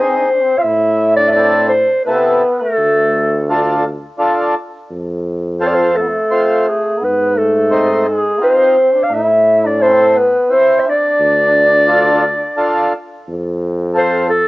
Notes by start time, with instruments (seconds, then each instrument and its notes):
Already playing: accordion C4 D#4 G#4, clarinet C5
0.02 trombone D4
0.09 trombone C4
0.19 trombone D4
0.27 trombone C4
0.34 trombone D4
0.42 trombone C4
0.58 trombone F4, clarinet F5
0.62 tuba A2, trombone E4, clarinet E5
1.16 trombone D4, clarinet D5
1.27 clarinet D5 E5
1.32 accordion C4, trombone D4
1.36 accordion E4 A4
1.69 clarinet C5
2.05 accordion C3 E4 A4, trombone B3, clarinet B4
2.60 trombone A3, clarinet A4
2.78 tuba D2
3.50 accordion D4 F4 A4
4.19 accordion D4 F4 A4
4.91 tuba F2
5.61 accordion C4 F4 A4, trombone C4, clarinet C5
5.68 clarinet D5
5.74 trombone C4, clarinet C5
5.95 trombone A3, clarinet A4
6.01 trombone B3
6.09 trombone A3
6.31 accordion C4 F4 C5
6.69 clarinet G#4
7.00 tuba G#2, trombone B3, clarinet B4
7.37 trombone A3, clarinet A4
7.71 accordion C4 D#4 C5
8.07 trombone G#3, clarinet G#4
8.41 trombone C4, accordion C4 D#4 F4, clarinet C5
8.94 trombone D4
9.04 clarinet F5
9.11 tuba A2, trombone E4, clarinet E5
9.65 trombone D4, clarinet D5
9.81 trombone C4, accordion C4 E4 A4, clarinet C5
10.15 trombone B3, clarinet B4
10.49 accordion C4 E4 C5, trombone C4
10.53 clarinet C5
10.80 clarinet E5
10.87 trombone D4, clarinet D5
11.20 tuba D2
11.87 accordion D4 F4 A4
12.57 accordion D4 F4 A4
13.29 tuba F2
13.94 accordion C4 F4 A4, clarinet C5
14.30 clarinet A4